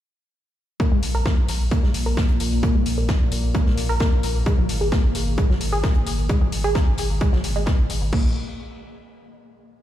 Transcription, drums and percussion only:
0.80 kick loud
0.80 closed hi-hat medium
1.03 closed hi-hat medium
1.03 open hi-hat loud
1.26 kick loud
1.26 snare loud
1.26 closed hi-hat medium
1.48 snare soft
1.48 closed hi-hat medium
1.48 open hi-hat loud
1.71 kick loud
1.71 closed hi-hat medium
1.83 snare soft
1.94 closed hi-hat medium
1.94 open hi-hat loud
2.17 kick loud
2.17 snare loud
2.17 closed hi-hat medium
2.29 closed hi-hat soft
2.40 closed hi-hat medium
2.40 open hi-hat loud
2.52 closed hi-hat soft
2.63 kick loud
2.63 closed hi-hat medium
2.86 closed hi-hat medium
2.86 open hi-hat loud
3.08 kick loud
3.08 snare loud
3.08 closed hi-hat medium
3.32 closed hi-hat medium
3.32 open hi-hat loud
3.54 kick loud
3.54 closed hi-hat loud
3.66 snare soft
3.77 closed hi-hat medium
3.77 open hi-hat loud
4.00 kick loud
4.00 snare loud
4.00 closed hi-hat medium
4.23 closed hi-hat medium
4.23 open hi-hat loud
4.46 kick loud
4.46 closed hi-hat medium
4.69 closed hi-hat medium
4.69 open hi-hat loud
4.92 kick loud
4.92 snare loud
4.92 closed hi-hat medium
5.15 snare soft
5.15 closed hi-hat medium
5.15 open hi-hat loud
5.38 kick loud
5.38 closed hi-hat medium
5.50 snare soft
5.61 closed hi-hat medium
5.61 open hi-hat loud
5.83 kick loud
5.83 snare loud
5.83 closed hi-hat medium
5.94 closed hi-hat soft
6.07 closed hi-hat medium
6.07 open hi-hat loud
6.18 closed hi-hat soft
6.29 kick loud
6.29 closed hi-hat medium
6.52 closed hi-hat medium
6.52 open hi-hat loud
6.75 kick loud
6.75 snare loud
6.75 closed hi-hat medium
6.97 closed hi-hat medium
6.97 open hi-hat loud
7.21 kick loud
7.21 closed hi-hat medium
7.33 snare soft
7.44 closed hi-hat medium
7.44 open hi-hat loud
7.66 kick loud
7.66 snare loud
7.66 closed hi-hat medium
7.90 closed hi-hat medium
7.90 open hi-hat loud
8.13 kick loud
8.13 crash medium

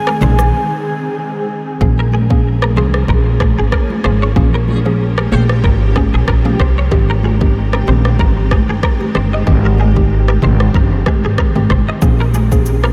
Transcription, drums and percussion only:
0.07 cross-stick loud
0.07 high conga medium
0.21 mid tom loud
0.21 high conga medium
0.21 low conga medium
0.21 shaker soft
0.39 cross-stick medium
0.39 shaker medium
1.81 kick loud
1.81 low conga medium
2.12 high conga medium
2.31 kick medium
2.62 cross-stick medium
2.62 high conga medium
2.77 high conga medium
2.77 low conga medium
2.94 cross-stick medium
3.08 kick loud
3.08 low conga medium
3.40 kick medium
3.40 cross-stick medium
3.40 high conga medium
3.72 kick medium
3.72 cross-stick loud
3.90 high conga medium
4.04 cross-stick medium
4.04 high conga medium
4.36 kick loud
4.36 low conga medium
4.68 high conga medium
5.18 cross-stick medium
5.18 high conga medium
5.32 high conga medium
5.32 low conga medium
5.49 cross-stick medium
5.64 kick loud
5.64 low conga medium
5.96 kick medium
5.96 cross-stick medium
5.96 high conga medium
6.28 kick medium
6.28 cross-stick loud
6.45 high conga medium
6.60 kick loud
6.60 cross-stick medium
6.60 high conga medium
6.92 kick loud
6.92 low conga medium
7.23 high conga medium
7.41 kick medium
7.73 cross-stick medium
7.73 high conga medium
7.88 high conga medium
7.88 low conga medium
8.05 cross-stick medium
8.19 kick loud
8.19 low conga medium
8.51 kick medium
8.51 cross-stick medium
8.51 high conga medium
8.83 kick loud
8.83 cross-stick loud
9.01 high conga medium
9.15 cross-stick medium
9.15 high conga medium
9.47 kick loud
9.47 low conga medium
9.78 high conga medium
9.97 kick medium
10.28 cross-stick medium
10.28 high conga medium
10.42 mid tom loud
10.42 high conga medium
10.42 low conga medium
10.60 cross-stick medium
10.74 kick medium
10.74 low conga medium
11.06 kick medium
11.06 cross-stick medium
11.06 high conga medium
11.38 kick medium
11.38 cross-stick loud
11.56 high conga medium
11.70 kick loud
11.70 cross-stick medium
11.70 mid tom medium
11.70 high conga medium
12.02 kick loud
12.02 low conga medium
12.02 shaker medium
12.34 high conga medium
12.34 shaker medium
12.52 kick medium
12.52 shaker medium
12.66 shaker medium
12.83 cross-stick medium
12.83 high conga medium

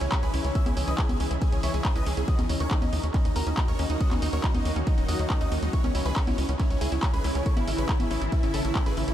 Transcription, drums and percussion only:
0.01 closed hi-hat medium
0.12 kick loud
0.12 clap loud
0.12 closed hi-hat medium
0.23 closed hi-hat medium
0.34 open hi-hat medium
0.44 closed hi-hat medium
0.55 kick loud
0.55 closed hi-hat medium
0.66 closed hi-hat medium
0.66 high conga medium
0.77 open hi-hat loud
0.88 closed hi-hat medium
0.98 kick loud
0.98 clap loud
0.98 closed hi-hat medium
1.09 closed hi-hat medium
1.09 high conga medium
1.20 open hi-hat loud
1.31 closed hi-hat medium
1.42 kick loud
1.42 closed hi-hat medium
1.52 closed hi-hat medium
1.63 open hi-hat loud
1.74 closed hi-hat medium
1.85 kick loud
1.85 clap loud
1.85 closed hi-hat medium
1.96 closed hi-hat medium
2.06 open hi-hat loud
2.17 closed hi-hat medium
2.28 kick loud
2.28 closed hi-hat medium
2.39 closed hi-hat medium
2.39 high conga medium
2.49 open hi-hat loud
2.60 closed hi-hat medium
2.71 kick loud
2.71 clap loud
2.71 closed hi-hat medium
2.82 closed hi-hat medium
2.82 high conga medium
2.93 open hi-hat loud
3.03 closed hi-hat medium
3.14 kick loud
3.14 clap soft
3.14 closed hi-hat medium
3.25 closed hi-hat medium
3.36 open hi-hat loud
3.47 closed hi-hat medium
3.57 kick loud
3.57 clap loud
3.57 closed hi-hat medium
3.68 closed hi-hat medium
3.79 open hi-hat loud
3.90 closed hi-hat medium
4.01 kick loud
4.01 closed hi-hat medium
4.11 clap soft
4.11 closed hi-hat medium
4.11 high conga medium
4.22 open hi-hat loud
4.33 closed hi-hat medium
4.44 kick loud
4.44 clap loud
4.44 closed hi-hat medium
4.54 closed hi-hat medium
4.54 high conga medium
4.65 open hi-hat loud
4.76 closed hi-hat medium
4.87 kick loud
4.87 closed hi-hat medium
4.98 closed hi-hat medium
5.09 open hi-hat loud
5.19 closed hi-hat medium
5.30 kick loud
5.30 clap loud
5.30 closed hi-hat medium
5.41 closed hi-hat medium
5.52 open hi-hat medium
5.62 closed hi-hat medium
5.73 kick loud
5.73 closed hi-hat medium
5.84 closed hi-hat medium
5.84 high conga medium
5.95 open hi-hat loud
6.06 closed hi-hat medium
6.16 kick loud
6.16 clap loud
6.16 closed hi-hat medium
6.27 closed hi-hat medium
6.27 high conga medium
6.38 open hi-hat loud
6.49 closed hi-hat medium
6.60 kick loud
6.60 clap soft
6.60 closed hi-hat medium
6.70 closed hi-hat medium
6.81 open hi-hat loud
6.92 closed hi-hat medium
7.03 kick loud
7.03 clap loud
7.03 closed hi-hat medium
7.14 closed hi-hat medium
7.24 open hi-hat loud
7.35 closed hi-hat medium
7.46 kick loud
7.46 closed hi-hat medium
7.57 closed hi-hat medium
7.57 high conga medium
7.68 open hi-hat loud
7.78 closed hi-hat medium
7.89 kick loud
7.89 clap loud
7.89 closed hi-hat medium
8.00 closed hi-hat medium
8.00 high conga medium
8.11 open hi-hat medium
8.22 closed hi-hat medium
8.32 kick loud
8.32 closed hi-hat medium
8.43 closed hi-hat medium
8.54 open hi-hat loud
8.65 closed hi-hat medium
8.75 kick loud
8.75 clap loud
8.75 closed hi-hat medium
8.86 closed hi-hat medium
8.97 open hi-hat medium
9.08 closed hi-hat medium

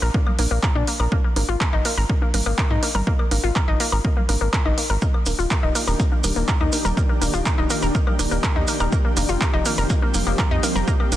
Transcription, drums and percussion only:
0.14 kick loud
0.27 low conga medium
0.27 high woodblock medium
0.39 open hi-hat loud
0.39 high conga medium
0.63 kick loud
0.63 clap loud
0.63 high woodblock soft
0.75 high conga medium
0.87 open hi-hat loud
1.00 high woodblock medium
1.12 kick loud
1.36 open hi-hat loud
1.36 high conga medium
1.36 high woodblock soft
1.61 kick loud
1.61 clap loud
1.73 high woodblock medium
1.85 open hi-hat loud
2.10 kick loud
2.10 high woodblock soft
2.22 high conga medium
2.34 open hi-hat loud
2.34 high conga medium
2.34 low conga medium
2.46 high woodblock medium
2.58 kick loud
2.58 clap loud
2.83 open hi-hat loud
2.83 high conga medium
2.83 high woodblock soft
2.95 low conga medium
3.07 kick loud
3.19 high woodblock medium
3.31 open hi-hat loud
3.31 high conga medium
3.56 kick loud
3.56 clap loud
3.56 high woodblock soft
3.80 open hi-hat loud
3.92 high woodblock medium
4.05 kick loud
4.17 low conga medium
4.29 open hi-hat loud
4.29 high conga medium
4.29 high woodblock soft
4.53 kick loud
4.53 clap loud
4.65 high conga medium
4.65 high woodblock medium
4.78 open hi-hat loud
5.02 kick loud
5.02 maracas soft
5.14 high woodblock medium
5.26 open hi-hat loud
5.26 high conga medium
5.26 maracas medium
5.39 maracas medium
5.51 kick loud
5.51 clap loud
5.51 high woodblock soft
5.51 maracas soft
5.75 open hi-hat loud
5.75 maracas medium
5.87 high woodblock medium
5.87 maracas medium
6.00 kick loud
6.00 maracas soft
6.12 high conga medium
6.24 open hi-hat loud
6.24 high conga medium
6.24 low conga medium
6.24 high woodblock soft
6.24 maracas medium
6.36 maracas medium
6.48 kick loud
6.48 clap loud
6.48 maracas soft
6.61 high woodblock medium
6.72 open hi-hat loud
6.72 high conga medium
6.72 maracas medium
6.85 low conga medium
6.85 maracas soft
6.97 kick loud
6.97 high woodblock soft
6.97 maracas soft
7.22 open hi-hat loud
7.22 high conga medium
7.22 maracas medium
7.34 high woodblock medium
7.34 maracas medium
7.46 kick loud
7.46 clap loud
7.46 maracas soft
7.70 open hi-hat loud
7.70 high woodblock soft
7.70 maracas medium
7.82 maracas medium
7.95 kick loud
7.95 maracas soft
8.07 low conga medium
8.07 high woodblock medium
8.19 open hi-hat medium
8.19 high conga medium
8.19 maracas medium
8.31 maracas soft
8.43 kick loud
8.43 clap loud
8.43 high woodblock soft
8.43 maracas soft
8.56 high conga medium
8.67 open hi-hat loud
8.67 maracas medium
8.80 high woodblock medium
8.80 maracas soft
8.92 kick loud
8.92 maracas soft
9.17 open hi-hat loud
9.17 high conga loud
9.17 high woodblock soft
9.17 maracas loud
9.29 maracas soft
9.41 kick loud
9.41 clap loud
9.41 maracas soft
9.53 high woodblock medium
9.65 open hi-hat loud
9.65 maracas medium
9.78 maracas medium
9.90 kick loud
9.90 high woodblock soft
9.90 maracas soft
10.02 high conga loud
10.14 open hi-hat medium
10.14 high conga medium
10.14 low conga medium
10.14 maracas medium
10.26 high woodblock medium
10.26 maracas soft
10.39 kick loud
10.39 clap loud
10.39 maracas soft
10.63 open hi-hat loud
10.63 high conga medium
10.63 high woodblock soft
10.63 maracas medium
10.75 low conga medium
10.75 maracas soft
10.88 kick loud
10.88 maracas soft
11.00 high woodblock medium
11.12 open hi-hat loud
11.12 high conga loud
11.12 maracas loud

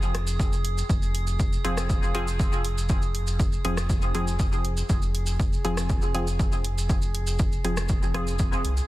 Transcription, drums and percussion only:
0.02 maracas soft
0.15 cross-stick medium
0.15 closed hi-hat medium
0.27 maracas medium
0.40 kick loud
0.40 maracas medium
0.53 maracas soft
0.65 closed hi-hat medium
0.78 maracas medium
0.90 kick loud
0.90 maracas medium
1.02 maracas soft
1.15 closed hi-hat medium
1.27 maracas medium
1.40 kick loud
1.40 maracas medium
1.53 maracas soft
1.65 closed hi-hat medium
1.77 cross-stick medium
1.77 maracas medium
1.90 kick loud
1.90 maracas medium
2.03 maracas soft
2.15 closed hi-hat medium
2.28 maracas medium
2.40 kick loud
2.40 maracas medium
2.53 maracas soft
2.65 closed hi-hat medium
2.78 maracas medium
2.89 kick loud
2.89 maracas medium
3.02 maracas soft
3.15 closed hi-hat medium
3.27 maracas medium
3.40 kick loud
3.40 maracas medium
3.52 maracas soft
3.65 closed hi-hat medium
3.77 cross-stick medium
3.77 maracas medium
3.90 kick loud
3.90 maracas medium
4.02 maracas soft
4.15 closed hi-hat medium
4.28 maracas medium
4.39 kick loud
4.39 maracas medium
4.53 maracas soft
4.65 closed hi-hat medium
4.77 maracas medium
4.89 kick loud
4.89 maracas medium
5.02 maracas soft
5.15 closed hi-hat medium
5.26 maracas medium
5.40 kick loud
5.40 maracas medium
5.53 maracas soft
5.65 closed hi-hat medium
5.77 cross-stick medium
5.77 maracas medium
5.89 kick loud
5.89 maracas medium
6.02 maracas soft
6.15 closed hi-hat medium
6.27 maracas medium
6.39 kick loud
6.39 maracas medium
6.52 maracas soft
6.64 closed hi-hat medium
6.78 maracas medium
6.89 kick loud
6.89 maracas medium
7.02 maracas soft
7.15 closed hi-hat medium
7.27 maracas medium
7.39 kick loud
7.39 maracas medium
7.52 maracas soft
7.65 closed hi-hat medium
7.77 cross-stick medium
7.77 maracas medium
7.89 kick loud
7.89 maracas medium
8.03 maracas soft
8.15 cross-stick medium
8.15 closed hi-hat medium
8.27 maracas medium
8.39 kick loud
8.39 maracas medium
8.53 maracas soft
8.65 closed hi-hat medium
8.77 maracas medium

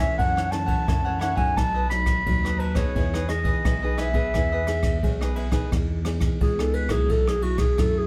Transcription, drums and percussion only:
0.19 kick medium
0.19 ride soft
0.37 cross-stick medium
0.52 cross-stick medium
0.52 ride soft
0.68 kick medium
0.68 ride soft
0.88 kick medium
0.88 cross-stick medium
0.88 ride soft
1.21 cross-stick medium
1.21 ride soft
1.37 kick medium
1.37 ride soft
1.57 kick medium
1.57 cross-stick medium
1.57 ride soft
1.90 cross-stick medium
1.90 ride soft
2.06 kick medium
2.06 cross-stick medium
2.06 ride soft
2.26 kick medium
2.26 ride soft
2.45 cross-stick medium
2.60 ride soft
2.75 kick medium
2.75 cross-stick medium
2.75 ride soft
2.95 kick medium
2.95 ride soft
3.14 cross-stick medium
3.29 cross-stick medium
3.29 ride soft
3.45 kick medium
3.45 ride soft
3.65 kick medium
3.65 cross-stick medium
3.65 ride soft
3.98 cross-stick medium
3.98 ride soft
4.14 kick medium
4.14 ride soft
4.34 kick medium
4.34 cross-stick medium
4.34 ride soft
4.67 cross-stick medium
4.67 ride soft
4.83 kick medium
4.83 cross-stick medium
4.83 ride soft
5.03 kick medium
5.03 ride soft
5.21 cross-stick medium
5.36 ride soft
5.52 kick medium
5.52 cross-stick medium
5.52 ride soft
5.72 kick medium
5.72 cross-stick medium
5.72 ride soft
6.05 cross-stick medium
6.05 ride soft
6.21 kick medium
6.21 cross-stick medium
6.21 ride soft
6.41 kick medium
6.41 ride soft
6.59 cross-stick medium
6.73 ride soft
6.89 kick medium
6.89 cross-stick medium
6.89 ride soft
7.09 kick medium
7.09 ride soft
7.28 cross-stick medium
7.42 ride soft
7.58 kick medium
7.58 cross-stick medium
7.58 ride soft
7.78 kick medium
7.78 cross-stick medium
7.78 ride soft

